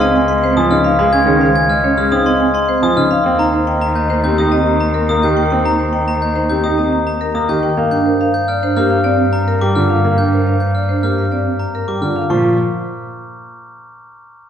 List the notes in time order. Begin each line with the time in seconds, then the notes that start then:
Already playing: C#2
0.00 C4 D#5 C6
0.15 G#5
0.28 D#5 C6
0.42 C4 C5
0.57 F3 G#5 D#6
0.71 C#3 D#4 D#5 F6
0.84 F5
0.99 G#3 F5
1.13 C#4 G#5 G#6
1.26 D#3 G#4 C#5
1.41 C5 F5
1.56 G#5 G#6
1.70 D#5 F6
1.84 C#4 C#5
1.97 G#3 G#4 F6
2.11 C4 D#4 F5 D#6
2.26 C4 D#5 C6
2.40 G#5
2.54 D#5 C6
2.68 C4 C5
2.83 F3 G#5 D#6
2.97 C#3 D#4 D#5 F6
3.11 F5
3.24 D#2 C4 G5
3.39 D#4 A#5
3.53 C5
3.67 D#5 G5
3.81 A#5
3.95 D#5 G6
4.10 D#4 C5
4.24 C4 G4 G6
4.38 D#4 G4 G5 D#6
4.52 C4 D#5
4.67 A#5
4.81 A#5
4.94 A#4
5.08 A#3 A#5 D#6
5.22 D#3 G4 D#5 G6
5.37 G5
5.50 C4 G5
5.65 D#4 A#5
5.79 C5
5.93 D#5 G5
6.08 A#5
6.21 D#5 G6
6.36 D#4 C5
6.50 C4 G4 G6
6.64 D#4 G4 G5 D#6
6.78 C4 D#5
6.92 A#5
7.07 A#5
7.21 A#4
7.35 A#3 A#5 D#6
7.49 D#3 G4 D#5 G6
7.63 G5
7.77 G2 A#3 F5
7.91 D4 G5 G6
8.06 A#4 C5
8.20 C5 F5
8.34 G6
8.48 D5 F6
8.63 D4 C5
8.77 A#3 G4 F6
8.90 F5
9.04 C4 D5
9.33 A#5
9.48 A#4
9.61 G3 G5 D6
9.75 D3 F4 D5 F6
9.90 F5
10.04 A#3 F5
10.18 D4 G5 G6
10.32 A#4 C5
10.46 C5 F5
10.60 G6
10.75 D5 F6
10.89 D4 C5
11.03 A#3 G4 F6
11.18 F5
11.32 C4 D5
11.60 A#5
11.75 A#4
11.88 G3 G5 D6
12.01 D3 F4 D5 F6
12.16 F5
12.30 A#2 F3 F4 C5 C#6